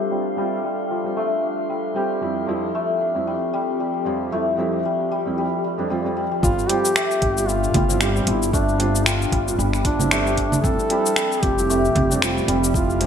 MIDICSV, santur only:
0, 0, Header, 1, 2, 480
1, 0, Start_track
1, 0, Tempo, 526316
1, 104, Time_signature, 4, 2, 24, 8
1, 11915, End_track
2, 0, Start_track
2, 0, Title_t, "Santur"
2, 0, Program_c, 0, 15
2, 0, Note_on_c, 0, 53, 66
2, 0, Note_on_c, 0, 55, 69
2, 0, Note_on_c, 0, 57, 83
2, 0, Note_on_c, 0, 62, 63
2, 95, Note_off_c, 0, 55, 0
2, 106, Note_on_c, 0, 55, 71
2, 334, Note_off_c, 0, 55, 0
2, 345, Note_on_c, 0, 55, 96
2, 573, Note_off_c, 0, 55, 0
2, 584, Note_on_c, 0, 55, 74
2, 815, Note_off_c, 0, 53, 0
2, 826, Note_on_c, 0, 53, 68
2, 1060, Note_off_c, 0, 57, 0
2, 1064, Note_on_c, 0, 57, 92
2, 1302, Note_off_c, 0, 62, 0
2, 1306, Note_on_c, 0, 62, 65
2, 1535, Note_off_c, 0, 55, 0
2, 1546, Note_on_c, 0, 55, 74
2, 1773, Note_off_c, 0, 55, 0
2, 1784, Note_on_c, 0, 55, 88
2, 2013, Note_off_c, 0, 55, 0
2, 2024, Note_on_c, 0, 55, 70
2, 2069, Note_off_c, 0, 53, 0
2, 2265, Note_on_c, 0, 53, 72
2, 2502, Note_off_c, 0, 57, 0
2, 2505, Note_on_c, 0, 57, 89
2, 2742, Note_off_c, 0, 62, 0
2, 2745, Note_on_c, 0, 62, 68
2, 2974, Note_off_c, 0, 55, 0
2, 2985, Note_on_c, 0, 55, 78
2, 3213, Note_off_c, 0, 55, 0
2, 3224, Note_on_c, 0, 55, 87
2, 3455, Note_off_c, 0, 55, 0
2, 3466, Note_on_c, 0, 55, 67
2, 3693, Note_off_c, 0, 53, 0
2, 3704, Note_on_c, 0, 53, 71
2, 3939, Note_off_c, 0, 57, 0
2, 3943, Note_on_c, 0, 57, 93
2, 4181, Note_off_c, 0, 62, 0
2, 4184, Note_on_c, 0, 62, 66
2, 4414, Note_off_c, 0, 55, 0
2, 4425, Note_on_c, 0, 55, 74
2, 4654, Note_off_c, 0, 55, 0
2, 4665, Note_on_c, 0, 55, 92
2, 4894, Note_off_c, 0, 55, 0
2, 4905, Note_on_c, 0, 55, 78
2, 5135, Note_off_c, 0, 55, 0
2, 5146, Note_on_c, 0, 55, 64
2, 5275, Note_off_c, 0, 62, 0
2, 5279, Note_on_c, 0, 62, 66
2, 5371, Note_off_c, 0, 55, 0
2, 5382, Note_on_c, 0, 55, 68
2, 5613, Note_off_c, 0, 55, 0
2, 5624, Note_on_c, 0, 55, 74
2, 5748, Note_off_c, 0, 55, 0
2, 5759, Note_on_c, 0, 55, 67
2, 5854, Note_off_c, 0, 55, 0
2, 5865, Note_on_c, 0, 55, 81
2, 5909, Note_off_c, 0, 53, 0
2, 6103, Note_on_c, 0, 53, 77
2, 6342, Note_off_c, 0, 57, 0
2, 6345, Note_on_c, 0, 57, 93
2, 6581, Note_off_c, 0, 62, 0
2, 6584, Note_on_c, 0, 62, 75
2, 6813, Note_off_c, 0, 55, 0
2, 6824, Note_on_c, 0, 55, 84
2, 7051, Note_off_c, 0, 55, 0
2, 7062, Note_on_c, 0, 55, 93
2, 7292, Note_off_c, 0, 55, 0
2, 7303, Note_on_c, 0, 55, 79
2, 7533, Note_off_c, 0, 53, 0
2, 7544, Note_on_c, 0, 53, 82
2, 7778, Note_off_c, 0, 57, 0
2, 7782, Note_on_c, 0, 57, 102
2, 8021, Note_off_c, 0, 62, 0
2, 8024, Note_on_c, 0, 62, 79
2, 8254, Note_off_c, 0, 55, 0
2, 8265, Note_on_c, 0, 55, 86
2, 8491, Note_off_c, 0, 55, 0
2, 8502, Note_on_c, 0, 55, 95
2, 8732, Note_off_c, 0, 55, 0
2, 8743, Note_on_c, 0, 55, 84
2, 8972, Note_off_c, 0, 53, 0
2, 8983, Note_on_c, 0, 53, 74
2, 9220, Note_off_c, 0, 57, 0
2, 9224, Note_on_c, 0, 57, 98
2, 9460, Note_off_c, 0, 62, 0
2, 9464, Note_on_c, 0, 62, 75
2, 9692, Note_off_c, 0, 55, 0
2, 9703, Note_on_c, 0, 55, 82
2, 9749, Note_off_c, 0, 53, 0
2, 9932, Note_off_c, 0, 55, 0
2, 9943, Note_on_c, 0, 55, 105
2, 10170, Note_off_c, 0, 55, 0
2, 10181, Note_on_c, 0, 55, 78
2, 10424, Note_on_c, 0, 53, 77
2, 10661, Note_off_c, 0, 57, 0
2, 10664, Note_on_c, 0, 57, 100
2, 10900, Note_off_c, 0, 62, 0
2, 10903, Note_on_c, 0, 62, 72
2, 11133, Note_off_c, 0, 55, 0
2, 11144, Note_on_c, 0, 55, 84
2, 11371, Note_off_c, 0, 55, 0
2, 11382, Note_on_c, 0, 55, 103
2, 11611, Note_off_c, 0, 55, 0
2, 11622, Note_on_c, 0, 55, 87
2, 11852, Note_off_c, 0, 53, 0
2, 11862, Note_on_c, 0, 53, 76
2, 11915, Note_off_c, 0, 53, 0
2, 11915, Note_off_c, 0, 55, 0
2, 11915, Note_off_c, 0, 57, 0
2, 11915, Note_off_c, 0, 62, 0
2, 11915, End_track
0, 0, End_of_file